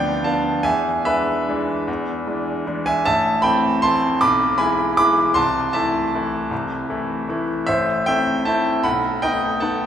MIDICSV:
0, 0, Header, 1, 2, 480
1, 0, Start_track
1, 0, Key_signature, 0, "minor"
1, 0, Tempo, 403226
1, 777, Time_signature, 3, 2, 24, 8
1, 3179, Tempo, 382897
1, 8459, Tempo, 388853
1, 12138, End_track
2, 0, Start_track
2, 0, Title_t, "Grand piano"
2, 0, Program_c, 0, 0
2, 0, Control_c, 0, 64, 127
2, 0, Note_on_c, 0, 38, 66
2, 0, Note_on_c, 0, 53, 51
2, 0, Note_on_c, 0, 59, 49
2, 0, Note_on_c, 0, 62, 54
2, 0, Note_on_c, 0, 74, 77
2, 0, Note_on_c, 0, 77, 75
2, 0, Note_on_c, 0, 79, 98
2, 0, Note_on_c, 0, 83, 94
2, 255, Note_off_c, 0, 59, 0
2, 256, Note_off_c, 0, 53, 0
2, 257, Note_off_c, 0, 62, 0
2, 266, Note_off_c, 0, 74, 0
2, 290, Note_on_c, 0, 81, 83
2, 293, Note_off_c, 0, 79, 0
2, 297, Note_off_c, 0, 77, 0
2, 297, Note_on_c, 0, 77, 62
2, 306, Note_on_c, 0, 53, 48
2, 310, Note_on_c, 0, 59, 54
2, 313, Note_on_c, 0, 62, 52
2, 732, Note_off_c, 0, 53, 0
2, 734, Note_off_c, 0, 59, 0
2, 736, Note_off_c, 0, 62, 0
2, 742, Note_off_c, 0, 77, 0
2, 753, Note_on_c, 0, 80, 100
2, 767, Note_on_c, 0, 76, 74
2, 769, Note_on_c, 0, 40, 63
2, 771, Note_off_c, 0, 81, 0
2, 797, Control_c, 0, 64, 0
2, 800, Note_off_c, 0, 83, 0
2, 805, Note_off_c, 0, 38, 0
2, 1008, Control_c, 0, 64, 127
2, 1227, Note_off_c, 0, 76, 0
2, 1247, Note_off_c, 0, 40, 0
2, 1253, Note_on_c, 0, 76, 99
2, 1254, Note_off_c, 0, 80, 0
2, 1260, Note_on_c, 0, 52, 47
2, 1262, Note_on_c, 0, 71, 76
2, 1268, Note_on_c, 0, 56, 50
2, 1275, Note_on_c, 0, 62, 56
2, 1712, Note_off_c, 0, 52, 0
2, 1716, Note_off_c, 0, 56, 0
2, 1719, Note_off_c, 0, 62, 0
2, 1767, Note_on_c, 0, 52, 53
2, 1771, Note_on_c, 0, 56, 52
2, 1777, Note_on_c, 0, 62, 56
2, 2192, Note_off_c, 0, 52, 0
2, 2195, Note_off_c, 0, 56, 0
2, 2198, Note_off_c, 0, 62, 0
2, 2233, Note_on_c, 0, 40, 69
2, 2255, Control_c, 0, 64, 0
2, 2417, Control_c, 0, 64, 127
2, 2688, Note_off_c, 0, 40, 0
2, 2695, Note_on_c, 0, 52, 51
2, 2704, Note_on_c, 0, 56, 50
2, 2710, Note_on_c, 0, 62, 52
2, 3128, Note_off_c, 0, 52, 0
2, 3132, Note_off_c, 0, 56, 0
2, 3136, Note_off_c, 0, 62, 0
2, 3176, Note_on_c, 0, 52, 52
2, 3180, Note_on_c, 0, 56, 54
2, 3184, Note_on_c, 0, 62, 54
2, 3374, Note_off_c, 0, 71, 0
2, 3409, Note_off_c, 0, 76, 0
2, 3416, Note_on_c, 0, 80, 105
2, 3428, Note_on_c, 0, 76, 75
2, 3612, Note_off_c, 0, 52, 0
2, 3614, Note_off_c, 0, 56, 0
2, 3617, Note_off_c, 0, 62, 0
2, 3647, Note_off_c, 0, 76, 0
2, 3657, Note_off_c, 0, 80, 0
2, 3661, Note_on_c, 0, 81, 111
2, 3670, Note_on_c, 0, 76, 78
2, 3674, Note_on_c, 0, 33, 66
2, 3683, Control_c, 0, 64, 0
2, 3836, Control_c, 0, 64, 127
2, 4112, Note_off_c, 0, 76, 0
2, 4119, Note_on_c, 0, 83, 106
2, 4133, Note_off_c, 0, 33, 0
2, 4134, Note_on_c, 0, 79, 81
2, 4135, Note_on_c, 0, 52, 52
2, 4140, Note_off_c, 0, 81, 0
2, 4144, Note_on_c, 0, 60, 55
2, 4149, Note_on_c, 0, 57, 50
2, 4581, Note_off_c, 0, 52, 0
2, 4585, Note_off_c, 0, 60, 0
2, 4588, Note_off_c, 0, 57, 0
2, 4595, Note_off_c, 0, 79, 0
2, 4622, Note_off_c, 0, 83, 0
2, 4622, Note_on_c, 0, 84, 110
2, 4635, Note_on_c, 0, 81, 79
2, 4648, Note_on_c, 0, 57, 50
2, 4650, Note_on_c, 0, 52, 54
2, 4652, Note_on_c, 0, 60, 58
2, 5072, Note_off_c, 0, 57, 0
2, 5073, Note_off_c, 0, 52, 0
2, 5074, Note_off_c, 0, 60, 0
2, 5079, Note_off_c, 0, 81, 0
2, 5106, Note_off_c, 0, 84, 0
2, 5107, Note_on_c, 0, 86, 111
2, 5114, Note_on_c, 0, 83, 89
2, 5127, Note_on_c, 0, 35, 69
2, 5134, Control_c, 0, 64, 0
2, 5347, Control_c, 0, 64, 127
2, 5551, Note_off_c, 0, 83, 0
2, 5570, Note_on_c, 0, 83, 102
2, 5581, Note_on_c, 0, 80, 79
2, 5585, Note_off_c, 0, 35, 0
2, 5586, Note_on_c, 0, 52, 54
2, 5588, Note_on_c, 0, 56, 50
2, 5589, Note_off_c, 0, 86, 0
2, 5595, Note_on_c, 0, 64, 58
2, 6022, Note_off_c, 0, 52, 0
2, 6024, Note_off_c, 0, 56, 0
2, 6027, Note_off_c, 0, 64, 0
2, 6034, Note_off_c, 0, 80, 0
2, 6062, Note_off_c, 0, 83, 0
2, 6065, Note_on_c, 0, 86, 120
2, 6081, Note_on_c, 0, 83, 81
2, 6083, Note_on_c, 0, 52, 52
2, 6085, Note_on_c, 0, 56, 57
2, 6088, Note_on_c, 0, 64, 58
2, 6506, Note_off_c, 0, 52, 0
2, 6507, Note_off_c, 0, 56, 0
2, 6509, Note_off_c, 0, 64, 0
2, 6519, Note_off_c, 0, 83, 0
2, 6529, Note_on_c, 0, 84, 108
2, 6543, Note_on_c, 0, 36, 68
2, 6544, Note_off_c, 0, 86, 0
2, 6545, Note_on_c, 0, 81, 89
2, 6572, Control_c, 0, 64, 0
2, 6777, Control_c, 0, 64, 127
2, 6983, Note_off_c, 0, 81, 0
2, 7001, Note_off_c, 0, 36, 0
2, 7007, Note_off_c, 0, 84, 0
2, 7016, Note_on_c, 0, 81, 97
2, 7030, Note_on_c, 0, 52, 50
2, 7032, Note_on_c, 0, 76, 75
2, 7043, Note_on_c, 0, 57, 53
2, 7043, Note_on_c, 0, 64, 54
2, 7468, Note_off_c, 0, 52, 0
2, 7475, Note_off_c, 0, 57, 0
2, 7475, Note_off_c, 0, 64, 0
2, 7539, Note_on_c, 0, 52, 53
2, 7544, Note_on_c, 0, 57, 53
2, 7551, Note_on_c, 0, 64, 60
2, 7962, Note_off_c, 0, 52, 0
2, 7965, Note_off_c, 0, 57, 0
2, 7968, Note_off_c, 0, 64, 0
2, 7990, Note_on_c, 0, 36, 66
2, 8016, Control_c, 0, 64, 0
2, 8173, Control_c, 0, 64, 127
2, 8445, Note_off_c, 0, 36, 0
2, 8478, Note_on_c, 0, 52, 52
2, 8479, Note_on_c, 0, 57, 54
2, 8482, Note_on_c, 0, 64, 57
2, 8908, Note_off_c, 0, 52, 0
2, 8908, Note_off_c, 0, 57, 0
2, 8910, Note_off_c, 0, 64, 0
2, 8958, Note_on_c, 0, 57, 56
2, 8961, Note_on_c, 0, 52, 54
2, 8967, Note_on_c, 0, 64, 58
2, 9150, Note_off_c, 0, 76, 0
2, 9192, Note_off_c, 0, 81, 0
2, 9388, Note_off_c, 0, 57, 0
2, 9389, Note_off_c, 0, 52, 0
2, 9393, Note_off_c, 0, 64, 0
2, 9425, Note_on_c, 0, 76, 100
2, 9437, Note_on_c, 0, 72, 72
2, 9445, Note_on_c, 0, 33, 70
2, 9454, Control_c, 0, 64, 0
2, 9669, Control_c, 0, 64, 127
2, 9878, Note_off_c, 0, 72, 0
2, 9901, Note_off_c, 0, 33, 0
2, 9905, Note_off_c, 0, 76, 0
2, 9916, Note_on_c, 0, 79, 106
2, 9931, Note_on_c, 0, 57, 52
2, 9938, Note_on_c, 0, 60, 51
2, 9941, Note_on_c, 0, 76, 77
2, 9948, Note_on_c, 0, 64, 56
2, 10363, Note_off_c, 0, 57, 0
2, 10367, Note_off_c, 0, 60, 0
2, 10372, Note_off_c, 0, 64, 0
2, 10383, Note_off_c, 0, 76, 0
2, 10399, Note_on_c, 0, 81, 89
2, 10404, Note_off_c, 0, 79, 0
2, 10416, Note_on_c, 0, 76, 65
2, 10417, Note_on_c, 0, 60, 50
2, 10422, Note_on_c, 0, 57, 51
2, 10422, Note_on_c, 0, 64, 59
2, 10832, Note_off_c, 0, 60, 0
2, 10835, Note_off_c, 0, 57, 0
2, 10835, Note_off_c, 0, 64, 0
2, 10846, Note_off_c, 0, 76, 0
2, 10869, Note_off_c, 0, 81, 0
2, 10869, Note_on_c, 0, 83, 98
2, 10877, Note_on_c, 0, 35, 68
2, 10880, Note_on_c, 0, 78, 79
2, 10892, Control_c, 0, 64, 0
2, 11056, Control_c, 0, 64, 127
2, 11315, Note_off_c, 0, 78, 0
2, 11332, Note_off_c, 0, 35, 0
2, 11342, Note_off_c, 0, 83, 0
2, 11347, Note_on_c, 0, 79, 94
2, 11357, Note_on_c, 0, 75, 77
2, 11366, Note_on_c, 0, 57, 50
2, 11370, Note_on_c, 0, 59, 48
2, 11374, Note_on_c, 0, 63, 55
2, 11786, Note_off_c, 0, 57, 0
2, 11787, Note_off_c, 0, 59, 0
2, 11790, Note_off_c, 0, 63, 0
2, 11795, Note_off_c, 0, 75, 0
2, 11818, Note_on_c, 0, 81, 83
2, 11822, Note_off_c, 0, 79, 0
2, 11825, Note_on_c, 0, 57, 52
2, 11825, Note_on_c, 0, 78, 62
2, 11841, Note_on_c, 0, 59, 50
2, 11842, Note_on_c, 0, 63, 55
2, 12138, Note_off_c, 0, 57, 0
2, 12138, Note_off_c, 0, 59, 0
2, 12138, Note_off_c, 0, 63, 0
2, 12138, Note_off_c, 0, 78, 0
2, 12138, Note_off_c, 0, 81, 0
2, 12138, End_track
0, 0, End_of_file